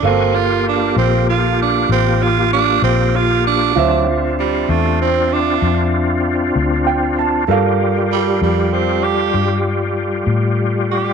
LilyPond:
<<
  \new Staff \with { instrumentName = "Upright piano" } { \time 12/8 \key g \dorian \tempo 4. = 65 << { r1. | r1 r4 g''8 a''8 | r1. | } \\ { <a' bes' f''>1. | <f' c'' e''>1. | <a' bes' f''>1. | } >> }
  \new Staff \with { instrumentName = "Tenor saxophone" } { \time 12/8 \key g \dorian c'8 f'8 d'8 c'8 f'8 d'8 c'8 f'8 d'8 c'8 f'8 d'8~ | d'8 r8 g8 a8 c'8 d'4 r2 r8 | r4 g8 g8 c'8 g'4 r2 g'8 | }
  \new Staff \with { instrumentName = "Tonewheel organ" } { \time 12/8 \key g \dorian <bes fis' gis''>8 <bes f' g'>1~ <bes f' g'>4. | <fis c' d'>8 <c' d' f'>1~ <c' d' f'>4. | <g f' g'>1. | }
  \new Staff \with { instrumentName = "Fingered electric bass" } { \clef bass \time 12/8 \key g \dorian g,,4. bes,,4. a,,4. bes,,4. | d,4. e,4. f,4. d,4. | g,4. f,4. g,4. a,4. | }
>>